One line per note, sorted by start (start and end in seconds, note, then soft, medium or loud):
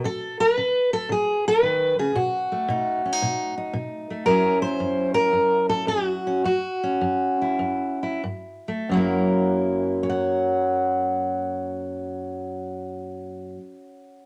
0.04 0.53 C#3 medium
0.04 0.40 A4 medium
0.40 0.93 B4 loud
0.58 1.06 C#3 medium
0.93 1.10 A4 medium
1.09 1.58 C#3 medium
1.09 1.46 G#4 medium
1.48 1.99 B4 loud
1.63 1.98 D#3 medium
1.99 2.15 C#3 medium
1.99 2.15 G#4 medium
2.15 2.64 B2 medium
2.15 3.73 F#4 medium
2.52 4.09 A3 soft
2.68 3.17 B2 medium
2.68 3.04 D#4 medium
3.05 3.12 C#4 soft
3.12 3.56 D#4 soft
3.22 3.71 B2 medium
3.58 4.24 D#4 soft
3.73 4.23 B2 medium
4.10 4.26 A3 soft
4.26 4.76 F#2 medium
4.26 6.42 F#3 soft
4.26 6.26 C#4 soft
4.26 6.43 E4 soft
4.26 4.62 A#4 loud
4.62 5.14 C5 loud
4.80 5.29 F#2 medium
5.14 5.69 A#4 loud
5.33 5.84 F#2 medium
5.69 5.87 A4 medium
5.87 6.40 F#2 medium
5.87 6.44 F#4 medium
6.27 6.42 C#4 soft
6.44 6.98 F#2 medium
6.44 8.25 F#4 medium
6.83 8.22 C#4 soft
7.01 7.57 F#2 medium
7.42 8.02 E4 medium
7.59 8.19 F#2 medium
8.03 8.21 E4 soft
8.24 8.85 G2 medium
8.68 8.90 A3 medium
8.89 13.55 F#2 medium
8.89 13.58 F#3 medium
8.94 13.60 A#3 medium
8.94 10.03 E4 medium
8.94 10.09 A#4 medium
10.03 14.26 C#5 medium
10.10 14.26 F#5 medium